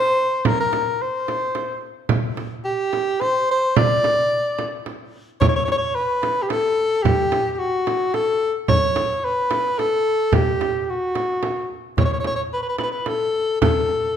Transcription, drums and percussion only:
0.45 frame drum
0.73 frame drum
1.28 frame drum
1.55 frame drum
2.09 frame drum
2.37 frame drum
2.93 frame drum
3.21 frame drum
3.76 frame drum
4.04 frame drum
4.59 frame drum
4.86 frame drum
5.41 tombak dum, frame drum
5.68 tombak tek, frame drum
6.22 tombak tek, frame drum
6.49 tombak tek, frame drum
6.77 tombak ka
7.04 tombak dum, frame drum
7.32 tombak tek, frame drum
7.87 tombak tek, frame drum
8.14 tombak tek, frame drum
8.42 tombak ka
8.68 frame drum, tombak dum
8.96 tombak tek, frame drum
9.51 tombak tek, frame drum
9.78 tombak tek, frame drum
10.06 tombak ka
10.32 tombak dum, frame drum
10.61 tombak tek, frame drum
10.88 tombak ka
11.15 tombak tek, frame drum
11.43 tombak tek, frame drum
11.71 tombak ka
11.97 tombak dum, frame drum
12.24 tombak tek, frame drum
12.78 tombak tek, frame drum
13.06 tombak tek, frame drum
13.34 tombak ka
13.62 tombak dum, frame drum
13.89 tombak tek

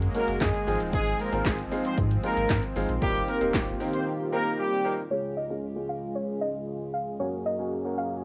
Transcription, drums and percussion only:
0.02 closed hi-hat, shaker
0.15 open hi-hat, shaker
0.28 closed hi-hat, shaker
0.41 kick, snare, clap, closed hi-hat, shaker
0.54 closed hi-hat, shaker
0.67 open hi-hat, shaker
0.80 closed hi-hat, shaker
0.93 kick, closed hi-hat, shaker
1.06 closed hi-hat, shaker
1.19 open hi-hat, shaker
1.32 closed hi-hat, shaker
1.45 kick, snare, clap, closed hi-hat, shaker
1.58 closed hi-hat, shaker
1.71 open hi-hat, shaker
1.85 closed hi-hat, shaker
1.98 kick, closed hi-hat, shaker
2.11 closed hi-hat, shaker
2.23 open hi-hat, shaker
2.37 closed hi-hat, shaker
2.50 kick, snare, clap, closed hi-hat, shaker
2.63 closed hi-hat, shaker
2.76 open hi-hat, shaker
2.89 closed hi-hat, shaker
3.02 kick, closed hi-hat, shaker
3.15 closed hi-hat, shaker
3.28 open hi-hat, shaker
3.41 closed hi-hat, shaker
3.54 kick, snare, clap, closed hi-hat, shaker
3.67 closed hi-hat, shaker
3.80 open hi-hat, shaker
3.93 closed hi-hat, shaker

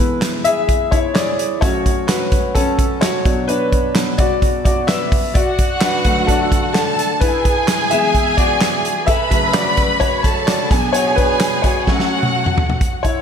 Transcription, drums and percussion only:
0.22 snare, clap, closed hi-hat
0.45 closed hi-hat
0.69 kick, closed hi-hat
0.92 kick, closed hi-hat
1.16 snare, clap, closed hi-hat
1.39 closed hi-hat
1.62 kick, closed hi-hat
1.86 kick, closed hi-hat
2.09 snare, clap, closed hi-hat
2.32 kick, closed hi-hat
2.55 kick, closed hi-hat
2.79 kick, closed hi-hat
3.02 snare, clap, closed hi-hat
3.25 kick, closed hi-hat
3.49 closed hi-hat
3.72 kick, closed hi-hat
3.95 snare, clap, closed hi-hat
4.18 kick, closed hi-hat
4.42 kick, closed hi-hat
4.65 kick, closed hi-hat
4.89 snare, clap, closed hi-hat
5.12 kick, open hi-hat
5.35 kick, closed hi-hat
5.59 kick, closed hi-hat
5.81 snare, clap, closed hi-hat
6.05 kick, closed hi-hat
6.28 kick, closed hi-hat
6.52 kick, closed hi-hat
6.75 snare, clap, closed hi-hat
6.98 snare, closed hi-hat
7.21 kick, closed hi-hat
7.45 kick, closed hi-hat
7.68 snare, clap, closed hi-hat
7.91 closed hi-hat
8.15 kick, closed hi-hat
8.38 kick, closed hi-hat
8.61 snare, clap, closed hi-hat
8.85 closed hi-hat
9.08 kick, closed hi-hat
9.31 kick, closed hi-hat
9.54 snare, clap, closed hi-hat
9.77 kick, closed hi-hat
10.01 kick, closed hi-hat
10.24 kick, closed hi-hat
10.48 snare, clap, closed hi-hat
10.71 kick, snare, closed hi-hat
10.94 closed hi-hat
11.18 kick, closed hi-hat
11.40 snare, clap, closed hi-hat
11.64 kick, closed hi-hat
11.87 kick, snare
11.99 snare
12.23 high tom
12.46 mid tom
12.58 floor tom
12.70 floor tom
12.81 kick, closed hi-hat
13.05 kick, closed hi-hat

